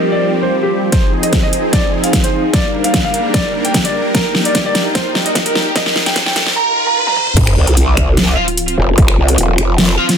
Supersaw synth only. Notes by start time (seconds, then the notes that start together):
Already playing: F3 G3 C4 G4
2.53 G3 A#3 D4 A#4
4.14 D#4
7.37 F3 C4 F4